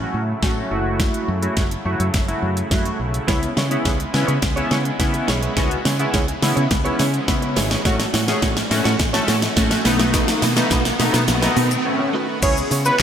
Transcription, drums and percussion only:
0.43 kick, snare
1.00 kick, snare, closed hi-hat
1.14 closed hi-hat
1.43 closed hi-hat
1.57 kick, snare, closed hi-hat
1.71 closed hi-hat
2.00 closed hi-hat
2.14 kick, snare, closed hi-hat
2.29 closed hi-hat
2.57 closed hi-hat
2.71 kick, snare, closed hi-hat
2.85 closed hi-hat
3.14 closed hi-hat
3.28 kick, snare, closed hi-hat
3.43 closed hi-hat
3.57 snare
3.71 closed hi-hat
3.85 kick, snare, closed hi-hat
4.00 closed hi-hat
4.14 snare
4.28 closed hi-hat
4.42 kick, snare, closed hi-hat
4.57 closed hi-hat
4.71 snare
4.85 closed hi-hat
5.00 kick, snare, closed hi-hat
5.14 closed hi-hat
5.28 snare
5.43 closed hi-hat
5.57 kick, snare, closed hi-hat
5.71 closed hi-hat
5.85 snare, open hi-hat
5.99 closed hi-hat
6.14 kick, snare, closed hi-hat
6.28 closed hi-hat
6.42 snare, open hi-hat
6.57 closed hi-hat
6.71 kick, snare, closed hi-hat
6.85 closed hi-hat
6.99 snare, open hi-hat
7.14 closed hi-hat
7.28 kick, snare, closed hi-hat
7.42 closed hi-hat
7.56 snare, open hi-hat
7.71 snare, closed hi-hat
7.85 kick, snare, closed hi-hat
8.00 snare, closed hi-hat
8.14 snare, open hi-hat
8.28 snare, closed hi-hat
8.42 kick, snare, closed hi-hat
8.57 snare, closed hi-hat
8.71 snare, open hi-hat
8.85 snare, closed hi-hat
8.99 kick, snare, closed hi-hat
9.14 snare, closed hi-hat
9.28 snare, open hi-hat
9.42 snare, closed hi-hat
9.57 kick, snare, closed hi-hat
9.71 snare, closed hi-hat
9.85 snare, open hi-hat
9.99 snare, closed hi-hat
10.14 kick, snare, closed hi-hat, shaker
10.28 snare, closed hi-hat, shaker
10.42 snare, open hi-hat, shaker
10.57 snare, closed hi-hat, shaker
10.71 kick, snare, closed hi-hat, shaker
10.85 snare, closed hi-hat, shaker
11.00 snare, open hi-hat, shaker
11.14 snare, closed hi-hat, shaker
11.28 snare, closed hi-hat, shaker
11.42 snare, closed hi-hat, shaker
11.57 open hi-hat, shaker
11.71 closed hi-hat, shaker
12.43 kick, closed hi-hat, crash, shaker
12.57 shaker
12.71 open hi-hat, shaker
12.85 shaker

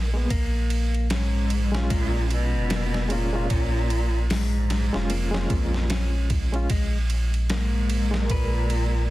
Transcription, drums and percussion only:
0.30 kick, ride
0.70 ride
0.94 ride
1.10 snare, ride
1.50 ride
1.75 snare
1.90 kick, ride
2.30 ride
2.70 snare, ride
2.94 snare
3.10 ride
3.50 kick, ride
3.90 ride
4.30 snare, open hi-hat
4.70 snare, ride
4.94 snare
5.10 ride
5.34 snare
5.50 kick, ride
5.74 snare
5.90 snare, ride
6.30 kick, ride
6.54 ride
6.70 kick, ride
7.10 ride
7.34 ride
7.50 snare, ride
7.90 ride
8.14 snare
8.30 kick, ride
8.70 ride

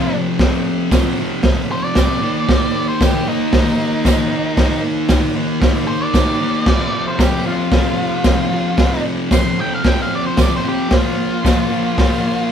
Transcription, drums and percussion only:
0.39 kick, snare, open hi-hat
0.91 kick, snare, open hi-hat, tambourine
1.43 kick, snare, open hi-hat
1.95 kick, snare, open hi-hat, tambourine
2.49 kick, snare, open hi-hat
3.01 kick, snare, open hi-hat, tambourine
3.52 kick, snare, open hi-hat
4.05 kick, snare, open hi-hat, tambourine
4.57 kick, snare, open hi-hat
5.08 kick, snare, open hi-hat, tambourine
5.62 kick, snare, open hi-hat
6.14 kick, snare, open hi-hat, tambourine
6.66 kick, snare, crash
7.19 kick, snare, open hi-hat, tambourine
7.71 kick, snare, open hi-hat
8.24 kick, snare, open hi-hat, tambourine
8.77 kick, snare, open hi-hat
9.31 kick, snare, open hi-hat, tambourine
9.84 kick, snare, open hi-hat
10.37 kick, snare, open hi-hat, tambourine
10.91 kick, snare, open hi-hat
11.45 kick, snare, open hi-hat, tambourine
11.98 kick, snare, open hi-hat

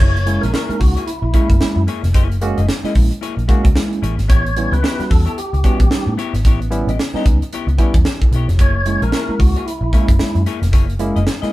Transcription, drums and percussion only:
0.00 kick, crash
0.17 closed hi-hat
0.27 closed hi-hat
0.43 closed hi-hat
0.54 snare
0.70 closed hi-hat
0.81 kick, open hi-hat
0.97 closed hi-hat
1.07 closed hi-hat
1.34 kick, closed hi-hat
1.50 kick, closed hi-hat
1.61 snare
1.88 closed hi-hat
2.04 snare, closed hi-hat
2.14 kick, closed hi-hat
2.32 closed hi-hat
2.41 closed hi-hat
2.58 closed hi-hat
2.69 snare
2.85 snare, closed hi-hat
2.95 kick, open hi-hat
3.12 closed hi-hat
3.23 closed hi-hat
3.39 closed hi-hat
3.49 kick, closed hi-hat
3.65 kick, closed hi-hat
3.75 snare
3.93 closed hi-hat
4.04 closed hi-hat
4.19 snare, closed hi-hat
4.30 kick, closed hi-hat
4.46 closed hi-hat
4.57 closed hi-hat
4.73 closed hi-hat
4.84 snare
5.00 snare, closed hi-hat
5.11 kick, open hi-hat
5.27 closed hi-hat
5.38 closed hi-hat
5.54 closed hi-hat
5.64 kick, closed hi-hat
5.80 kick, closed hi-hat
5.91 snare
6.19 closed hi-hat
6.34 snare, closed hi-hat
6.45 kick, closed hi-hat
6.62 closed hi-hat
6.72 closed hi-hat
6.89 closed hi-hat
6.99 snare
7.15 snare
7.26 kick, closed hi-hat
7.42 closed hi-hat
7.53 closed hi-hat
7.69 closed hi-hat
7.78 kick, closed hi-hat
7.94 kick, closed hi-hat
8.05 snare
8.22 kick, closed hi-hat
8.33 closed hi-hat
8.49 snare, closed hi-hat
8.59 kick, closed hi-hat
8.86 closed hi-hat
9.02 closed hi-hat
9.12 snare
9.40 kick, open hi-hat
9.56 closed hi-hat
9.68 closed hi-hat
9.93 kick, closed hi-hat
10.08 kick, closed hi-hat
10.19 snare
10.36 closed hi-hat
10.46 closed hi-hat
10.63 snare, closed hi-hat
10.73 kick, closed hi-hat
10.90 closed hi-hat
10.99 closed hi-hat
11.16 closed hi-hat
11.27 snare
11.43 snare, closed hi-hat

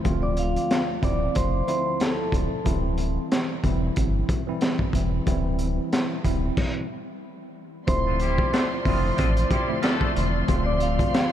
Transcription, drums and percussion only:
0.05 kick, closed hi-hat
0.37 closed hi-hat
0.56 closed hi-hat
0.71 snare, closed hi-hat
1.03 kick, closed hi-hat
1.35 kick, closed hi-hat
1.68 closed hi-hat
2.00 snare, closed hi-hat
2.32 kick, closed hi-hat
2.66 kick, closed hi-hat
2.98 closed hi-hat
3.32 snare, closed hi-hat
3.64 kick, closed hi-hat
3.96 kick, closed hi-hat
4.29 kick, closed hi-hat
4.61 snare, closed hi-hat
4.79 kick
4.93 kick, closed hi-hat
5.27 kick, closed hi-hat
5.59 closed hi-hat
5.93 snare, closed hi-hat
6.25 kick, closed hi-hat
6.57 kick, crash
7.88 kick, closed hi-hat
8.20 closed hi-hat
8.38 kick
8.54 snare, closed hi-hat
8.85 kick, open hi-hat
9.18 kick, closed hi-hat
9.37 closed hi-hat
9.51 kick, closed hi-hat
9.83 snare, closed hi-hat
10.01 kick
10.16 closed hi-hat
10.48 kick, closed hi-hat
10.80 closed hi-hat
10.99 kick, closed hi-hat
11.14 snare, closed hi-hat

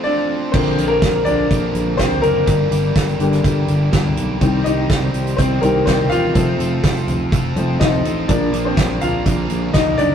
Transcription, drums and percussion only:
0.54 kick, crash
0.78 closed hi-hat
1.02 kick, snare, closed hi-hat
1.26 closed hi-hat, floor tom
1.51 kick, closed hi-hat
1.75 closed hi-hat
1.99 kick, snare, closed hi-hat
2.12 floor tom
2.23 closed hi-hat
2.47 kick, closed hi-hat
2.72 closed hi-hat
2.96 kick, snare, closed hi-hat
3.08 closed hi-hat
3.20 closed hi-hat
3.33 snare, closed hi-hat
3.44 kick, closed hi-hat
3.68 closed hi-hat
3.93 kick, snare, closed hi-hat
4.05 floor tom
4.17 closed hi-hat
4.41 kick, closed hi-hat
4.66 closed hi-hat
4.90 kick, snare, closed hi-hat
5.14 closed hi-hat
5.27 closed hi-hat
5.38 kick, closed hi-hat
5.63 closed hi-hat
5.87 kick, snare, closed hi-hat
5.99 floor tom
6.12 closed hi-hat
6.35 kick, closed hi-hat
6.60 closed hi-hat
6.84 kick, snare, closed hi-hat
6.97 closed hi-hat
7.08 closed hi-hat, floor tom
7.32 kick, closed hi-hat
7.56 closed hi-hat
7.81 kick, snare, closed hi-hat
7.93 floor tom
8.05 closed hi-hat
8.29 kick, closed hi-hat
8.54 closed hi-hat
8.77 kick, snare, closed hi-hat
9.01 closed hi-hat, floor tom
9.26 kick, closed hi-hat
9.50 closed hi-hat
9.74 kick, snare, closed hi-hat
9.86 floor tom
9.99 closed hi-hat

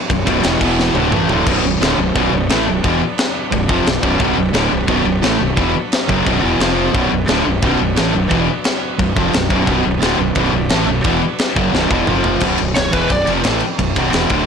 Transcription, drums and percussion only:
0.10 kick, ride
0.27 kick, ride
0.43 snare, ride
0.61 kick, crash
0.80 snare
0.95 high tom
1.12 mid tom
1.29 floor tom
1.46 kick, crash
1.82 snare, crash
2.15 kick, crash
2.49 snare, crash
2.84 kick, crash
3.18 snare, crash
3.52 kick, crash
3.69 kick
3.86 snare, crash
4.03 kick
4.19 kick, crash
4.54 snare, crash
4.88 kick, crash
5.23 snare, crash
5.57 kick, crash
5.92 snare, crash
6.09 kick
6.26 kick, crash
6.60 snare, crash
6.94 kick, crash
7.28 snare, crash
7.62 kick, crash
7.96 snare, crash
8.31 kick, crash
8.64 snare, crash
8.99 kick, crash
9.16 kick
9.33 snare, crash
9.50 kick
9.67 kick, crash
10.02 snare, crash
10.35 kick, crash
10.69 snare, crash
11.04 kick, crash
11.38 snare, crash
11.56 kick
11.75 snare
11.91 kick
12.07 mid tom
12.24 floor tom
12.40 kick, crash
12.58 ride
12.75 snare, ride
12.93 kick, ride
13.10 kick, ride
13.27 ride
13.44 snare, ride
13.60 ride
13.79 kick, ride
13.96 kick, ride
14.13 snare, ride
14.30 kick, ride

